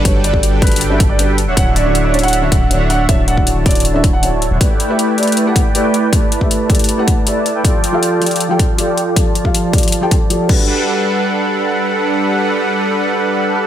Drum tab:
CC |--------------------------------|--------------------------------|--------------------------------|--------------------------------|
HH |x---x---x---xxxxx---x---x---x---|x---x---x---xxxxx---x---x---x---|x---x---x---xxxxx---x---x---x---|x---x---x---xxxxx---x---x---x---|
BD |o-----o-----o-------o-----------|o-------------------o-----------|o-----o-----o-------o-----------|o-------------------o-----------|

CC |--------------------------------|--------------------------------|----------------------------x---|--------------------------------|
HH |x---x---x---xxxxx---x---x---x---|x---x---x---xxxxx---x---x---x---|x---x---x---xxxxx---x---x-------|--------------------------------|
BD |o-----o-----o-------o-----------|o-------------------o-----------|o-----o-----o-------o-------o---|--------------------------------|

CC |--------------------------------|
HH |--------------------------------|
BD |--------------------------------|